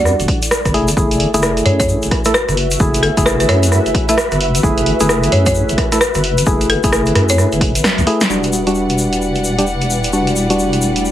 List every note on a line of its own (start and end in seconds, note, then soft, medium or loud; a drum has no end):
0.00 0.13 E2 medium
0.00 0.39 G3 loud
0.00 0.39 D4 medium
0.00 2.13 E4 medium
0.00 0.39 F#4 loud
0.00 1.40 A4 medium
0.00 0.42 D5 medium
0.00 0.74 D5 medium
0.05 cross-stick medium
0.05 shaker medium
0.19 0.26 E1 medium
0.19 closed hi-hat soft
0.19 shaker soft
0.28 kick loud
0.28 open hi-hat medium
0.42 closed hi-hat medium
0.42 shaker medium
0.51 cross-stick loud
0.51 shaker medium
0.65 0.93 F#1 medium
0.65 kick medium
0.65 cross-stick medium
0.65 closed hi-hat soft
0.65 shaker soft
0.74 0.90 A3 medium
0.74 0.90 E4 medium
0.74 9.29 F#4 medium
0.74 0.90 G#4 loud
0.74 open hi-hat medium
0.88 closed hi-hat medium
0.88 shaker medium
0.97 1.28 F#1 loud
0.97 1.31 A3 medium
0.97 1.31 E4 medium
0.97 1.31 G#4 medium
0.97 9.79 E5 medium
0.97 kick loud
0.97 shaker medium
1.11 closed hi-hat soft
1.11 shaker soft
1.15 10.13 B4 medium
1.20 open hi-hat loud
1.34 1.62 F#1 medium
1.34 2.22 A3 loud
1.34 2.22 E4 medium
1.34 2.22 G#4 loud
1.34 closed hi-hat medium
1.34 shaker medium
1.42 cross-stick loud
1.42 shaker medium
1.57 closed hi-hat soft
1.57 shaker soft
1.66 1.96 F#2 medium
1.66 1.75 C#5 medium
1.66 open hi-hat loud
1.80 1.85 C#5 medium
1.80 kick loud
1.80 closed hi-hat medium
1.80 shaker medium
1.89 shaker medium
2.02 2.09 F#1 medium
2.02 closed hi-hat soft
2.02 shaker soft
2.11 kick loud
2.11 cross-stick soft
2.11 open hi-hat medium
2.25 2.32 A3 medium
2.25 2.32 E4 medium
2.25 2.32 A4 medium
2.25 cross-stick medium
2.25 closed hi-hat medium
2.25 shaker medium
2.34 2.50 B4 medium
2.34 cross-stick loud
2.34 shaker medium
2.49 2.76 F#1 medium
2.49 cross-stick soft
2.49 closed hi-hat soft
2.49 shaker soft
2.57 open hi-hat loud
2.71 closed hi-hat medium
2.71 shaker medium
2.79 3.11 F#1 loud
2.79 3.14 A3 medium
2.79 3.14 E4 medium
2.79 3.14 G#4 medium
2.79 kick loud
2.79 shaker medium
2.94 closed hi-hat medium
2.94 shaker soft
3.03 3.19 A4 medium
3.03 open hi-hat loud
3.17 3.45 F#1 medium
3.17 4.05 A3 medium
3.17 4.05 E4 medium
3.17 4.05 G#4 loud
3.17 kick medium
3.17 closed hi-hat medium
3.17 shaker medium
3.26 3.35 B4 medium
3.26 cross-stick loud
3.26 shaker medium
3.40 3.46 B4 medium
3.40 closed hi-hat medium
3.40 shaker soft
3.49 3.79 F#2 medium
3.49 3.64 C#5 medium
3.49 cross-stick medium
3.49 open hi-hat loud
3.63 closed hi-hat medium
3.63 shaker medium
3.72 cross-stick medium
3.72 shaker medium
3.86 3.92 F#1 medium
3.86 closed hi-hat soft
3.86 shaker soft
3.95 kick loud
3.95 open hi-hat loud
4.09 4.15 A3 medium
4.09 4.15 E4 medium
4.09 4.15 A4 medium
4.09 4.40 E5 medium
4.09 closed hi-hat medium
4.09 shaker medium
4.18 cross-stick loud
4.18 shaker medium
4.32 4.59 F#1 medium
4.32 cross-stick soft
4.32 closed hi-hat soft
4.32 shaker soft
4.41 open hi-hat loud
4.55 closed hi-hat medium
4.55 shaker medium
4.63 4.94 F#1 loud
4.63 4.97 A3 medium
4.63 4.97 E4 medium
4.63 4.97 G#4 medium
4.63 kick loud
4.63 shaker medium
4.78 closed hi-hat medium
4.78 shaker soft
4.86 open hi-hat loud
5.00 5.28 F#1 medium
5.00 5.89 A3 medium
5.00 5.89 E4 medium
5.00 5.89 G#4 loud
5.00 closed hi-hat medium
5.00 shaker medium
5.09 cross-stick loud
5.09 shaker medium
5.23 closed hi-hat medium
5.23 shaker soft
5.32 5.63 F#2 medium
5.32 5.41 C#5 medium
5.32 open hi-hat loud
5.46 5.52 C#5 medium
5.46 kick loud
5.46 closed hi-hat medium
5.46 shaker medium
5.54 shaker medium
5.69 5.75 F#1 medium
5.69 closed hi-hat soft
5.69 shaker soft
5.78 kick loud
5.78 cross-stick medium
5.78 open hi-hat loud
5.92 5.99 A3 medium
5.92 5.99 E4 medium
5.92 5.99 A4 medium
5.92 cross-stick medium
5.92 closed hi-hat medium
5.92 shaker medium
6.01 6.16 B4 medium
6.01 cross-stick loud
6.01 shaker medium
6.14 6.43 F#1 medium
6.14 cross-stick medium
6.14 closed hi-hat soft
6.14 shaker soft
6.24 open hi-hat loud
6.38 closed hi-hat medium
6.38 shaker medium
6.46 6.77 F#1 loud
6.46 6.80 A3 medium
6.46 6.80 E4 medium
6.46 6.80 G#4 medium
6.46 kick loud
6.46 shaker medium
6.61 closed hi-hat medium
6.61 shaker soft
6.70 6.85 A4 medium
6.70 open hi-hat loud
6.83 7.11 F#1 medium
6.83 7.72 A3 loud
6.83 7.72 E4 medium
6.83 7.72 G#4 loud
6.83 kick loud
6.83 closed hi-hat medium
6.83 shaker medium
6.93 cross-stick loud
6.93 shaker medium
7.06 closed hi-hat medium
7.06 shaker soft
7.15 7.46 F#2 medium
7.15 cross-stick medium
7.15 open hi-hat loud
7.29 7.75 C#5 medium
7.29 closed hi-hat medium
7.29 shaker medium
7.38 cross-stick medium
7.38 shaker medium
7.52 7.80 F#1 medium
7.52 closed hi-hat soft
7.52 shaker soft
7.61 kick loud
7.61 open hi-hat loud
7.75 closed hi-hat medium
7.75 shaker medium
7.84 cross-stick loud
7.84 snare loud
7.84 shaker medium
7.98 8.04 C#2 medium
7.98 closed hi-hat soft
7.98 shaker soft
8.07 8.23 A3 medium
8.07 8.23 E4 medium
8.07 8.23 G#4 loud
8.07 open hi-hat loud
8.21 snare medium
8.21 closed hi-hat medium
8.21 shaker medium
8.29 11.11 E1 medium
8.29 8.63 G3 medium
8.29 11.11 G3 medium
8.29 8.63 D4 medium
8.29 11.11 E4 medium
8.29 8.63 F#4 medium
8.29 11.11 B4 medium
8.29 11.11 D5 medium
8.29 11.11 F#5 medium
8.29 shaker medium
8.37 11.11 A3 medium
8.43 closed hi-hat soft
8.43 shaker soft
8.53 shaker medium
8.63 9.55 G3 medium
8.63 9.55 D4 medium
8.63 9.55 F#4 loud
8.63 11.11 D5 medium
8.63 closed hi-hat medium
8.68 shaker soft
8.75 shaker medium
8.89 closed hi-hat soft
8.89 shaker soft
8.98 shaker medium
9.13 closed hi-hat medium
9.13 shaker soft
9.22 shaker soft
9.35 closed hi-hat soft
9.35 shaker soft
9.44 shaker medium
9.58 9.65 G3 medium
9.58 9.65 D4 medium
9.58 9.65 G4 medium
9.58 closed hi-hat medium
9.58 shaker soft
9.67 shaker soft
9.81 closed hi-hat soft
9.81 shaker soft
9.90 shaker medium
10.04 closed hi-hat medium
10.04 shaker soft
10.13 10.47 G3 medium
10.13 10.47 D4 medium
10.13 10.47 F#4 medium
10.13 shaker medium
10.27 closed hi-hat soft
10.27 shaker soft
10.36 shaker medium
10.50 11.11 G3 medium
10.50 11.11 D4 medium
10.50 11.11 F#4 loud
10.50 closed hi-hat medium
10.50 shaker soft
10.59 shaker medium
10.73 closed hi-hat soft
10.73 shaker soft
10.82 shaker loud
10.96 closed hi-hat medium
10.96 shaker soft
11.05 shaker soft